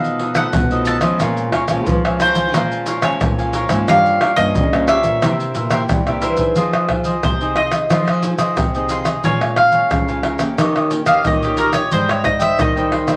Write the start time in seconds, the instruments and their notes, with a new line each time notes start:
Already playing: nylon-string guitar B2 F3 A3 D#4, cavaquinho D#4 A4 B4 D#5, mandolin F5
0.04 pandeiro, maracas
0.19 cavaquinho D#4 A4 B4 D#5, pandeiro
0.35 nylon-string guitar F3 A3 D#4, cavaquinho D#4 A4 B4 D#5, mandolin F#5, pandeiro, tamborim, maracas
0.53 nylon-string guitar F#2 B2, pandeiro, tamborim, maracas, surdo
0.71 nylon-string guitar F3 A3 D#4, cavaquinho A4 B4 D#5, pandeiro, maracas, surdo
0.85 cavaquinho D#4 A4 B4 D#5, mandolin A5, pandeiro, maracas
1.01 nylon-string guitar F3 G#3 C#4, cavaquinho A4 B4 D#5, pandeiro, tamborim, maracas, surdo
1.20 nylon-string guitar A#2, cavaquinho A#4 C#5 F5 G#5, pandeiro, tamborim, maracas, surdo
1.37 pandeiro, maracas
1.52 cavaquinho A#4 C#5 F5 G#5, pandeiro, tamborim, surdo
1.68 nylon-string guitar A#2 F3 G#3 C#4, cavaquinho C#5 F5 G#5, pandeiro, tamborim, maracas, surdo
1.87 nylon-string guitar F2 F3, pandeiro, maracas, surdo
2.04 nylon-string guitar F3 G#3 C#4, cavaquinho C#5 F5 G#5, pandeiro, tamborim, maracas
2.20 cavaquinho A#4 C#5 F5 G#5, mandolin C5, pandeiro, tamborim, maracas
2.35 nylon-string guitar F3, cavaquinho C#5 F5 G#5, pandeiro, maracas, surdo
2.54 nylon-string guitar A#2 F3 G#3 C#4, cavaquinho A#4 F5 G#5, pandeiro, tamborim, maracas, surdo
2.71 pandeiro, maracas
2.86 cavaquinho A#4 C#5 F5 G#5, pandeiro, maracas
3.02 nylon-string guitar F3 G#3 C#4, cavaquinho A#4 C#5 F5 G#5, mandolin C#5, pandeiro, tamborim, maracas
3.21 nylon-string guitar F2 A#2, pandeiro, tamborim, maracas, surdo
3.38 nylon-string guitar F3 G#3 C#4, cavaquinho C#5 F5 G#5, pandeiro, maracas, surdo
3.53 cavaquinho A#4 C#5 F5 G#5, pandeiro, maracas
3.69 nylon-string guitar G#2 F3 A#3 C#4, cavaquinho C#5 F5 G#5, pandeiro, tamborim, maracas, surdo
3.88 nylon-string guitar G2, cavaquinho G4 A#4 C#5 F5, mandolin F5, pandeiro, tamborim, maracas, surdo
4.06 pandeiro, maracas
4.21 cavaquinho G4 A#4 C#5 F5, pandeiro, tamborim
4.36 nylon-string guitar G2 F3 A#3 C#4, cavaquinho A#4 C#5 F5, mandolin D#5, pandeiro, tamborim, maracas, surdo
4.55 nylon-string guitar G2 C#3, pandeiro, maracas, surdo
4.73 nylon-string guitar F3 A#3 C#4, cavaquinho A#4 C#5 F5, pandeiro, tamborim, maracas
4.88 cavaquinho G4 A#4 C#5 F5, mandolin E5, pandeiro, tamborim, maracas
5.03 nylon-string guitar A#2, cavaquinho A#4 C#5 F5, pandeiro, maracas, surdo
5.22 nylon-string guitar C3 A#3 E4 G4, cavaquinho E4 A#4 C5 E5, pandeiro, tamborim, maracas, surdo
5.40 pandeiro, maracas
5.55 nylon-string guitar A#2, cavaquinho E4 A#4 C5 E5, pandeiro, maracas
5.70 nylon-string guitar A#3 E4 G4, cavaquinho E4 A#4 C5 E5, pandeiro, tamborim, maracas
5.89 nylon-string guitar G2 C3, pandeiro, tamborim, maracas, surdo
6.07 nylon-string guitar A#3 E4 G4, cavaquinho A#4 C5 E5, pandeiro, tamborim, maracas, surdo
6.22 nylon-string guitar E3, cavaquinho E4 A#4 C5 E5, pandeiro, maracas
6.37 nylon-string guitar C4 D#4 G#4, cavaquinho A#4 C5 E5, pandeiro, maracas, surdo
6.56 nylon-string guitar F3, cavaquinho F4 G#4 C5 D#5, pandeiro, maracas, surdo
6.73 cavaquinho G#4 C5 D#5, pandeiro, tamborim, maracas
6.89 nylon-string guitar C4 D#4 G#4, muted cavaquinho stroke, pandeiro, tamborim, surdo
7.04 cavaquinho G#4 C5 D#5, pandeiro, maracas
7.23 nylon-string guitar C3, mandolin C5, pandeiro, tamborim, maracas, surdo
7.41 nylon-string guitar C4 D#4 G#4, cavaquinho G#4 C5 D#5, pandeiro, maracas
7.56 cavaquinho F4 G#4 C5 D#5, mandolin D#5, pandeiro, tamborim
7.71 pandeiro, tamborim, maracas
7.90 nylon-string guitar F3 C4 D#4 G#4, cavaquinho F4 G#4 C5 D#5, pandeiro, tamborim, maracas, surdo
8.08 cavaquinho G#4 C5 D#5, pandeiro, tamborim, maracas
8.23 nylon-string guitar C4 D#4 G#4, pandeiro, maracas
8.38 nylon-string guitar F3, cavaquinho G#4 C5 D#5, pandeiro, tamborim, maracas
8.57 nylon-string guitar C3, pandeiro, tamborim, maracas, surdo
8.74 nylon-string guitar C4 D#4 G#4, cavaquinho G#4 C5 D#5, pandeiro, maracas
8.89 cavaquinho F4 G#4 C5 D#5, pandeiro, maracas
9.05 cavaquinho G#4 C5 D#5, pandeiro, tamborim, maracas
9.24 nylon-string guitar A#2 G#3 C#4 F4, cavaquinho A#4 C#5 F5 G#5, mandolin C#5, pandeiro, maracas, surdo
9.41 cavaquinho C#5 F5 G#5, pandeiro, tamborim, maracas
9.56 nylon-string guitar G#3 C#4 F4, mandolin F5, muted cavaquinho stroke, pandeiro, tamborim
9.72 cavaquinho C#5 F5 G#5, pandeiro, maracas
9.91 nylon-string guitar F2 C#3, pandeiro, tamborim, maracas, surdo
10.08 nylon-string guitar G#3 C#4 F4, cavaquinho C#5 F5 G#5, pandeiro, maracas
10.23 cavaquinho A#4 C#5 F5 G#5, pandeiro, tamborim
10.39 nylon-string guitar A#3 C#4 G4, pandeiro, tamborim, maracas
10.58 nylon-string guitar D#3, cavaquinho D#4 G4 C#5 D#5, pandeiro, tamborim, maracas, surdo
10.76 cavaquinho G4 C#5 D#5, pandeiro, tamborim, maracas
10.91 nylon-string guitar A#3 C#4 G4, muted cavaquinho stroke, pandeiro, maracas
11.06 nylon-string guitar D#3, cavaquinho G4 C#5 D#5, mandolin F5, pandeiro, tamborim, maracas
11.25 nylon-string guitar A#2 D#3, mandolin D#5, pandeiro, tamborim, maracas, surdo
11.42 nylon-string guitar A#3 C#4 G4, cavaquinho G4 C#5 D#5, mandolin G4, pandeiro, maracas
11.57 cavaquinho D#4 G4 C#5 D#5, mandolin A#4, pandeiro, maracas
11.73 cavaquinho G4 C#5 D#5, mandolin C#5, pandeiro, tamborim, maracas
11.92 nylon-string guitar G#2 G3 C4 D#4, cavaquinho G#4 C5 D#5 G5, mandolin C5, pandeiro, maracas, surdo
12.09 cavaquinho C5 D#5 G5, mandolin C#5, pandeiro, tamborim, maracas
12.24 nylon-string guitar G3 C4 D#4, mandolin D#5, muted cavaquinho stroke, pandeiro, tamborim, maracas, surdo
12.39 cavaquinho C5 D#5 G5, mandolin E5, pandeiro, maracas
12.59 nylon-string guitar D#3, mandolin D#5, pandeiro, tamborim, maracas, surdo
12.76 nylon-string guitar G3 C4 D#4, cavaquinho C5 D#5 G5, pandeiro, maracas
12.92 cavaquinho G#4 C5 D#5 G5, pandeiro, tamborim
13.07 nylon-string guitar G3 C4 D#4, pandeiro, tamborim, maracas